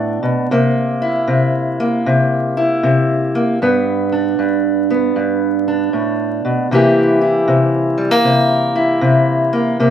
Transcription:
0.00 0.22 A2 medium
0.00 0.47 B3 medium
0.00 0.47 D4 medium
0.23 0.50 B2 medium
0.51 1.26 C3 medium
0.51 1.79 A#3 medium
1.02 2.56 E4 medium
1.27 2.05 C3 medium
1.80 3.34 A#3 medium
2.06 2.82 C3 medium
2.57 3.57 E4 medium
2.83 3.57 C3 medium
3.35 3.58 A#3 medium
3.62 4.38 G2 medium
3.62 4.89 B3 medium
4.12 5.67 D4 medium
4.39 5.15 G2 medium
4.90 6.68 B3 medium
5.16 5.93 G2 medium
5.68 6.68 D4 medium
5.93 6.43 A2 medium
6.45 6.71 B2 medium
6.71 7.47 C3 medium
6.71 9.77 E3 medium
6.71 7.97 A#3 medium
6.71 7.21 E4 medium
6.71 9.90 G4 medium
7.21 8.74 E4 medium
7.48 8.24 C3 medium
7.98 8.11 G3 medium
8.11 9.52 A#3 soft
8.24 9.00 C3 medium
8.76 9.76 E4 medium
9.01 9.76 C3 medium
9.53 9.76 A#3 medium
9.80 9.90 C3 medium
9.80 9.90 A#3 medium

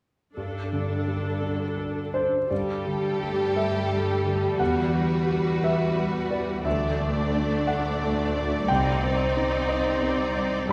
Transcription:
0.37 2.26 G2 soft
0.37 2.46 G2 soft
0.37 2.49 G2 soft
0.37 2.26 D4 soft
0.37 2.26 A4 soft
0.73 1.29 D3 soft
0.73 2.54 D3 soft
1.07 1.63 G3 soft
1.07 4.98 A4 soft
1.42 2.00 D4 soft
1.42 2.03 F#4 soft
1.77 2.36 A4 soft
2.14 2.50 D4 soft
2.14 4.62 D4 soft
2.14 2.48 C5 soft
2.49 4.56 G2 soft
2.49 4.63 G2 soft
2.49 4.56 G2 soft
2.49 6.61 G3 soft
2.49 4.55 G4 soft
2.49 4.56 A4 soft
2.49 3.52 D5 soft
2.85 4.24 D3 soft
2.85 3.42 G3 soft
3.21 3.90 A3 soft
3.21 3.77 G4 soft
3.56 4.12 A4 soft
3.56 4.56 E5 soft
3.91 4.46 G3 soft
3.91 4.63 A3 soft
4.25 4.63 D3 soft
4.25 4.60 A4 soft
4.58 6.61 E2 soft
4.58 6.68 E3 soft
4.58 6.61 F#4 soft
4.58 6.64 B4 soft
4.58 5.59 F#5 medium
4.94 5.50 G3 soft
4.94 6.30 E4 soft
5.27 5.97 G3 soft
5.27 5.83 F#4 soft
5.63 8.72 F#4 soft
5.63 6.17 B4 soft
5.63 6.27 E5 soft
5.97 6.51 G3 soft
5.97 6.68 G3 soft
6.31 6.68 E4 soft
6.31 6.65 B4 soft
6.31 6.63 D5 soft
6.65 8.65 D2 soft
6.65 8.72 D3 soft
6.65 8.65 A3 soft
6.65 8.65 D4 soft
6.65 10.66 D5 soft
6.65 7.63 E5 soft
7.00 8.34 A3 soft
7.00 7.54 A3 soft
7.35 7.88 D4 soft
7.67 8.22 D5 soft
7.67 8.65 F#5 medium
7.67 10.72 D6 soft
8.03 8.56 A3 soft
8.36 8.72 A3 soft
8.36 8.70 D5 soft
8.68 10.69 C2 soft
8.68 10.66 C2 soft
8.68 10.72 C3 soft
8.68 10.65 C4 soft
8.68 10.66 D#4 soft
8.68 9.65 G5 medium
9.03 10.35 G3 soft
9.03 9.56 C4 soft
9.36 10.02 C4 soft
9.36 9.90 D#4 soft
9.69 10.72 D#4 soft
9.69 10.23 C5 soft
9.69 10.32 D#5 medium
10.02 10.56 C4 soft
10.02 10.72 C4 soft
10.36 10.72 G3 soft
10.36 10.69 D5 soft
10.68 10.72 G2 soft
10.68 10.72 G3 soft
10.68 10.72 A3 soft

